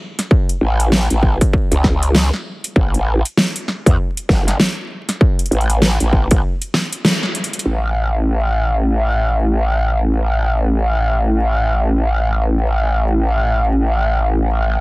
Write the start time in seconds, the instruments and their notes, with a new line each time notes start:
0.19 snare, closed hi-hat
0.31 kick
0.49 closed hi-hat
0.61 wobble bass A1
0.80 closed hi-hat
0.92 snare
1.10 wobble bass A1, closed hi-hat
1.23 kick
1.41 kick, closed hi-hat
1.53 kick
1.71 wobble bass C#2, closed hi-hat
1.84 kick, snare
2.03 closed hi-hat
2.15 snare
2.33 snare
2.64 closed hi-hat
2.76 wobble bass A1, kick
2.94 closed hi-hat
3.25 closed hi-hat
3.37 snare
3.56 closed hi-hat
3.68 snare
3.86 wobble bass E2, kick, closed hi-hat
4.17 closed hi-hat
4.29 wobble bass G1, kick, snare
4.48 snare, closed hi-hat
4.60 snare
5.09 snare, closed hi-hat
5.21 kick
5.39 closed hi-hat
5.46 closed hi-hat
5.51 wobble bass A1, closed hi-hat
5.61 closed hi-hat
5.70 closed hi-hat
5.82 snare
6.00 wobble bass A1, closed hi-hat
6.13 kick
6.31 wobble bass A1, kick, closed hi-hat
6.62 closed hi-hat
6.74 snare
6.93 closed hi-hat
7.05 snare
7.23 snare
7.35 closed hi-hat
7.44 closed hi-hat
7.53 closed hi-hat
7.59 closed hi-hat
7.65 wobble bass A1